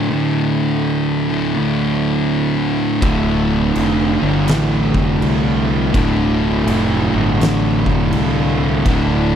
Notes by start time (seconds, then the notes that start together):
Already playing: D3 A3 E4
0.10 D2 A2 D3
1.29 D2 A2 D3
1.55 D2 A2 D3
3.01 D1 D2 A2 D3 G3, kick, crash
3.75 F1, crash
4.21 G1 D2 A2 D3
4.48 A1 D2 A2 D3, snare, crash
4.94 F1, kick
5.22 C2, crash
5.94 D1 D2 A2 D3, kick, crash
6.66 F1, crash
7.12 G1 D2 A2 D3
7.39 A1 D2 A2, snare, crash
7.43 D3
7.86 F1, kick
8.12 C2, crash
8.85 D1 D2 A2 D3, kick, crash